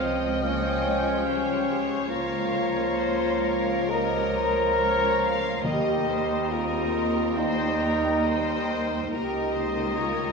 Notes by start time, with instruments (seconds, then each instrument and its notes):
Already playing: double bass section C#2, cello section C#2, bassoon F3, french horn section C4, viola section F4, clarinet C#5, violin section D#5 G5, oboe F5
0.00 viola section F3, violin section D#5
0.41 bassoon F3, viola section A#3 F4, french horn section C#4, violin section C#5, clarinet C#5, oboe F5
0.83 viola section G#3
1.25 viola section G3 G4, violin section C5 C#5
1.67 viola section G#3
2.09 double bass section C#2, cello section C#2, bassoon F3, viola section A#3 F4, french horn section F4, violin section A#4 F5, clarinet C#5, oboe A#5
2.54 viola section A#4
2.96 violin section C5 C#5 F5
3.42 violin section A#4 C#5
3.89 bassoon F3, viola section A#3 G4, violin section A#4 D#5, french horn section A#4, clarinet C#5, oboe A#5
4.37 viola section F4
4.78 viola section F4, violin section C#5
5.21 violin section F5
5.64 double bass section D#2, cello section D#2, timpani D#3, bassoon G3, viola section A#3 G4, french horn section G4, violin section D#5, clarinet D#5, oboe A#5
6.08 viola section A#4, violin section C5
6.50 viola section C4 G#4, french horn section F4, violin section A#4 D#5
6.95 viola section G4
7.36 bassoon G3, viola section A#3 G4, french horn section D#4, violin section C5 G5, clarinet D#5, oboe A#5
7.82 violin section A#4
8.25 viola section G3 A#4, violin section C5 D#5 G5
9.12 cello section C#2, double bass section C#2, bassoon D#3, viola section A#3 D#4, french horn section G4, violin section A#4 D#5, clarinet D#5, oboe A#5
9.55 violin section C5
9.97 french horn section F4, violin section C#5